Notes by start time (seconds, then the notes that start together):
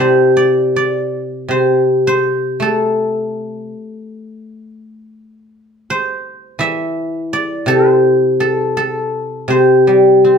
Already playing: C3 C4 D4 E4 G4 A4 D5 E5 G5 A5 C6 D6
0.00 C5
0.37 D5
0.76 D5
1.48 C3 C5
2.07 C5
2.60 A3 A4
5.90 C5
6.59 E3 E5
7.33 D5
7.66 C3 A4
7.90 C5
8.40 A4
8.77 A4
9.48 C3 C5
9.87 G3
10.23 C4 B4
10.35 A#4